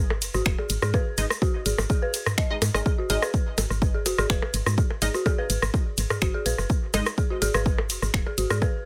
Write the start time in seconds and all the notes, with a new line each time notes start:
Already playing: G#1
0.10 percussion blips
0.22 F#1, closed hi-hat, ride, shaker
0.34 G#1 F#4, cross-stick, shaker
0.45 D#1, finger snap, kick, shaker
0.58 G#4, percussion blips
0.69 G#1, closed hi-hat, ride, shaker
0.82 G#2 G#4, cross-stick, shaker
0.94 B4, kick, percussion blips, shaker
1.18 G#1 G#3 D#4 D#5, closed hi-hat, ride, shaker
1.30 cross-stick, shaker
1.42 F#4, kick, percussion blips, shaker
1.66 G#1 G#4, closed hi-hat, ride, shaker
1.78 G#1, cross-stick, percussion blips, shaker
1.89 G#4, kick, shaker
2.02 B4
2.14 closed hi-hat, ride, shaker
2.26 cross-stick, mid tom, percussion blips, shaker
2.38 D#5, finger snap, kick, shaker
2.50 G#3 D#4 D#5
2.62 G#2, closed hi-hat, ride, percussion blips, shaker
2.74 G#1 G#3 D#4 G#4 D#5, cross-stick, shaker
2.86 G#4, kick, shaker
2.98 F#4
3.10 G#1 G#3 D#4 G#4 D#5, closed hi-hat, ride, shaker
3.22 B4, cross-stick, percussion blips, shaker
3.34 kick, shaker
3.58 G#1, closed hi-hat, ride, percussion blips, shaker
3.70 G#1, cross-stick, shaker
3.82 kick, shaker
3.94 G#4
4.06 F#1 F#4, closed hi-hat, ride, percussion blips, shaker
4.18 G#1 G#4, cross-stick, shaker
4.30 D#1 B4, finger snap, kick, shaker
4.42 percussion blips
4.54 G#1, closed hi-hat, ride, shaker
4.66 G#2, cross-stick, shaker
4.78 kick, shaker
4.90 percussion blips
5.02 G#1 G#3 D#4 G#4 D#5, closed hi-hat, ride, shaker
5.14 F#4, cross-stick, shaker
5.26 G#4, kick, percussion blips, shaker
5.38 B4
5.50 G#1, closed hi-hat, ride, shaker
5.62 G#1, cross-stick, shaker
5.74 kick, percussion blips, shaker
5.97 G#1, closed hi-hat, ride, shaker
6.10 G#4, cross-stick, mid tom, percussion blips, shaker
6.21 G#1 F#4, finger snap, kick, shaker
6.34 G#4
6.46 A#1 B4, closed hi-hat, ride, shaker
6.58 F#1, cross-stick, percussion blips, shaker
6.69 kick, shaker
6.94 G#1 G#3 D#4 D#5, closed hi-hat, ride, percussion blips, shaker
7.06 cross-stick, shaker
7.18 G#4, kick, shaker
7.30 F#4
7.42 G#1 G#4, closed hi-hat, ride, percussion blips, shaker
7.54 G#1 B4, cross-stick, shaker
7.66 kick, shaker
7.78 percussion blips
7.90 F#1, closed hi-hat, ride, shaker
8.02 G#1, cross-stick, shaker
8.14 D#1, finger snap, kick
8.26 G#4, percussion blips
8.38 G#1 F#4, closed hi-hat, ride, shaker
8.50 G#2 G#4, cross-stick, shaker
8.62 B4, kick, percussion blips, shaker